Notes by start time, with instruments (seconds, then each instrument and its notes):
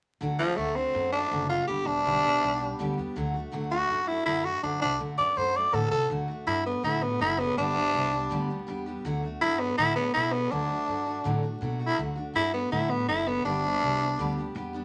0.21 upright bass D2, steel-string acoustic guitar D3 F#3 A3 D4 F#4
0.39 tenor saxophone F3, steel-string acoustic guitar A3 D4 F#4
0.57 upright bass D2, steel-string acoustic guitar D3 F#3 A3 D4 F#4, tenor saxophone A3
0.75 steel-string acoustic guitar A3 D4 F#4, tenor saxophone C4
0.94 upright bass F#2, steel-string acoustic guitar F#3 A3 D4 F#4
1.12 steel-string acoustic guitar A3 D4 F#4, tenor saxophone D4
1.31 upright bass F#1, steel-string acoustic guitar D3 F#3 A3 D4 F#4
1.49 steel-string acoustic guitar A3 D4 F#4, tenor saxophone F4
1.67 upright bass G1, steel-string acoustic guitar G2 D3 G3 B3 D4 G4, tenor saxophone G4
1.86 upright bass E1, steel-string acoustic guitar G3 B3 D4 G4, tenor saxophone D4
2.05 upright bass B1, steel-string acoustic guitar G2 D3 G3 B3 D4 G4
2.23 upright bass B1, steel-string acoustic guitar G3 B3 D4 G4
2.41 upright bass B1, steel-string acoustic guitar G3 B3 D4 G4
2.60 steel-string acoustic guitar G3 B3 D4 G4
2.79 upright bass D2, steel-string acoustic guitar G2 D3 G3 B3 D4 G4
2.97 upright bass E2, steel-string acoustic guitar G3 B3 D4 G4
3.16 upright bass D2, steel-string acoustic guitar D3 F#3 A3 D4 F#4
3.34 steel-string acoustic guitar A3 D4 F#4
3.52 upright bass D2, steel-string acoustic guitar D3 F#3 A3 D4 F#4
3.70 steel-string acoustic guitar A3 D4 F#4, tenor saxophone F#4
3.88 upright bass F#2, steel-string acoustic guitar F#3 A3 D4 F#4
4.06 steel-string acoustic guitar A3 D4 F#4, tenor saxophone E4
4.26 upright bass F#2, steel-string acoustic guitar D3 F#3 A3 D4 F#4, tenor saxophone E4
4.44 steel-string acoustic guitar A3 D4 F#4, tenor saxophone F#4
4.62 upright bass F#2, steel-string acoustic guitar D3 F#3 A3 D4 F#4, tenor saxophone D4
4.80 upright bass C2, steel-string acoustic guitar A3 D4 F#4, tenor saxophone D4
4.99 upright bass F#2, steel-string acoustic guitar D3 F#3 A3 D4 F#4
5.17 upright bass F#2, steel-string acoustic guitar A3 D4 F#4, tenor saxophone D5
5.35 upright bass F#2, steel-string acoustic guitar F#3 A3 D4 F#4, tenor saxophone C5
5.54 steel-string acoustic guitar A3 D4 F#4, tenor saxophone D5
5.72 upright bass A2, steel-string acoustic guitar D3 F#3 A3 D4 F#4, tenor saxophone A4
5.91 upright bass C3, steel-string acoustic guitar A3 D4 F#4, tenor saxophone A4
6.10 upright bass D2, steel-string acoustic guitar D3 F#3 A3 D4 F#4
6.28 steel-string acoustic guitar A3 D4 F#4
6.46 upright bass G2, steel-string acoustic guitar F#3 A3 D4 F#4, tenor saxophone E4
6.64 steel-string acoustic guitar A3 D4 F#4, tenor saxophone B3
6.83 upright bass A2, steel-string acoustic guitar D3 F#3 A3 D4 F#4, tenor saxophone E4
7.01 steel-string acoustic guitar A3 D4 F#4, tenor saxophone B3
7.19 upright bass F#1, steel-string acoustic guitar F#3 A3 D4 F#4, tenor saxophone E4
7.38 steel-string acoustic guitar A3 D4 F#4, tenor saxophone B3
7.57 upright bass G1, steel-string acoustic guitar G2 D3 G3 B3 D4 G4, tenor saxophone D4
7.75 steel-string acoustic guitar G3 B3 D4 G4
7.93 upright bass C2, steel-string acoustic guitar G3 B3 D4 G4
8.12 steel-string acoustic guitar G3 B3 D4 G4
8.30 upright bass D2, steel-string acoustic guitar G2 D3 G3 B3 D4 G4
8.48 steel-string acoustic guitar G3 B3 D4 G4
8.67 upright bass E2, steel-string acoustic guitar G3 B3 D4 G4
8.86 steel-string acoustic guitar G3 B3 D4 G4
9.05 upright bass D2, steel-string acoustic guitar D3 F#3 A3 D4 F#4
9.23 steel-string acoustic guitar A3 D4 F#4
9.41 upright bass G2, steel-string acoustic guitar F#3 A3 D4 F#4, tenor saxophone E4
9.60 steel-string acoustic guitar A3 D4 F#4, tenor saxophone B3
9.78 upright bass A2, steel-string acoustic guitar D3 F#3 A3 D4 F#4, tenor saxophone E4
9.96 steel-string acoustic guitar A3 D4 F#4, tenor saxophone B3
10.13 upright bass B2, steel-string acoustic guitar F#3 A3 D4 F#4, tenor saxophone E4
10.32 steel-string acoustic guitar A3 D4 F#4, tenor saxophone B3
10.51 upright bass D2, steel-string acoustic guitar D3 F#3 A3 D4 F#4, tenor saxophone D4
10.68 steel-string acoustic guitar A3 D4 F#4
10.87 upright bass G2, steel-string acoustic guitar F#3 A3 D4 F#4
11.06 steel-string acoustic guitar A3 D4 F#4
11.24 upright bass A2, steel-string acoustic guitar D3 F#3 A3 D4 F#4
11.43 steel-string acoustic guitar A3 D4 F#4
11.61 upright bass B2, steel-string acoustic guitar F#3 A3 D4 F#4
11.79 steel-string acoustic guitar A3 D4 F#4
11.86 tenor saxophone E4
11.97 upright bass D2, steel-string acoustic guitar D3 F#3 A3 D4 F#4
12.16 steel-string acoustic guitar A3 D4 F#4
12.33 upright bass G2, steel-string acoustic guitar F#3 A3 D4 F#4, tenor saxophone E4
12.53 steel-string acoustic guitar A3 D4 F#4, tenor saxophone B3
12.71 upright bass A2, steel-string acoustic guitar D3 F#3 A3 D4 F#4, tenor saxophone E4
12.89 steel-string acoustic guitar A3 D4 F#4, tenor saxophone B3
13.07 upright bass F#1, steel-string acoustic guitar F#3 A3 D4 F#4, tenor saxophone E4
13.26 steel-string acoustic guitar A3 D4 F#4, tenor saxophone B3
13.45 upright bass G1, steel-string acoustic guitar G2 D3 G3 B3 D4 G4, tenor saxophone D4
13.63 steel-string acoustic guitar G3 B3 D4 G4
13.82 upright bass C2, steel-string acoustic guitar G3 B3 D4 G4
14.00 steel-string acoustic guitar G3 B3 D4 G4
14.18 upright bass D2, steel-string acoustic guitar G2 D3 G3 B3 D4 G4
14.37 steel-string acoustic guitar G3 B3 D4 G4
14.55 upright bass E2, steel-string acoustic guitar G3 B3 D4 G4
14.73 steel-string acoustic guitar G3 B3 D4 G4